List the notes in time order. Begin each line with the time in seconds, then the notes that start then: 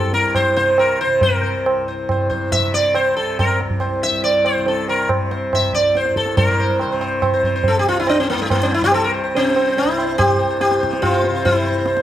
Already playing: C2 G2 C3 A4
0.07 G2
0.13 A#4, tabla te
0.35 C5, tabla na, tabla ge
0.56 C3 C5, tabla te
0.78 A#4, tabla na
1.01 C5
1.07 C3
1.21 A#4, tabla tin, tabla ge
1.43 C5
1.57 C2
1.66 tabla na
1.88 C5
2.09 G2 C5, tabla na, tabla ge
2.30 C5, tabla ge
2.52 E5, tabla tin, tabla ge
2.59 C3
2.74 D5
2.94 C5, tabla na
3.11 C3
3.17 A4
3.39 A#4, tabla na, tabla ge
3.60 C2, tabla te
3.70 tabla ge
3.80 C5, tabla na
4.03 E5
4.10 G2
4.24 D5, tabla tin
4.45 C5, tabla na
4.57 C3
4.66 A4, tabla tin
4.88 A#4, tabla na
5.08 C3, tabla na, tabla ge
5.31 C5, tabla te
5.53 E5, tabla na, tabla ge
5.60 C2
5.73 D5, tabla ge
5.95 C5, tabla te
6.05 G2, tabla te
6.16 A4, tabla ke
6.26 tabla te
6.36 G2 A#4 C5, tabla tin, tabla ge
6.50 C5
6.60 C5
6.79 C5, tabla na
6.86 C3
6.92 C5
7.01 C5, tabla na
7.22 C5, tabla na, tabla ge
7.34 C3 C5
7.43 C5, tabla ge
7.56 C5
7.63 tabla tin, tabla ge
7.68 A4
7.79 G4
7.85 C2 F4
8.00 E4
8.07 D4, tabla na
8.20 C4
8.30 A#3
8.35 G2
8.42 A3
8.50 A#3, tabla na, tabla ge
8.63 C4
8.72 E4, tabla te
8.82 C3 G4, tabla ge
8.92 A4, tabla na
9.04 A#4
9.14 C5
9.24 C5
9.35 C3 C4, tabla tin
9.44 C5
9.56 C5, tabla na
9.67 C5
9.77 E4, tabla tin
9.84 C2
9.88 C5
9.97 C5, tabla na
10.08 C5
10.18 G4, tabla na, tabla ge
10.27 C5
10.32 G2
10.39 C5
10.50 C5
10.61 G4, tabla te
10.71 C5, tabla te
10.80 C3 C5, tabla ke
10.91 C5, tabla te
11.02 F4, tabla na, tabla ge
11.13 C5
11.24 C5, tabla te
11.30 C3
11.35 C5
11.45 E4, tabla tin, tabla ge
11.56 C5
11.66 C5
11.78 C2 C5
11.86 C5, tabla te
11.97 tabla te